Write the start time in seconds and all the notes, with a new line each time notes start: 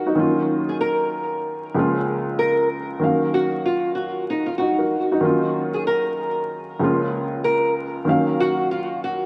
Already playing: D#3 F#3 A#3 C#4 D#4 F#4 A#4
0.06 D#4 F#4
0.15 D#3 F#3 A#3 C#4
0.20 F4
0.69 G#4
0.81 A#4
1.74 C#2 F3 G#3 A#3 C#4
1.79 F4
2.39 A#4
2.99 D#3 F#3 A#3 C#4
3.04 F5
3.34 F#4
3.66 F4
3.95 F#4
4.30 D#4
4.46 F4
4.58 D#4 F#4
4.78 F#4 A#4
5.12 D#4 F#4
5.21 D#3 F#3 A#3 C#4
5.25 F4
5.74 G#4
5.87 A#4
6.79 C#2 F3 G#3 A#3 C#4
6.84 F4
7.44 A#4
8.05 D#3 F#3 A#3 C#4
8.09 F5
8.40 F#4
8.71 F4
9.04 F#4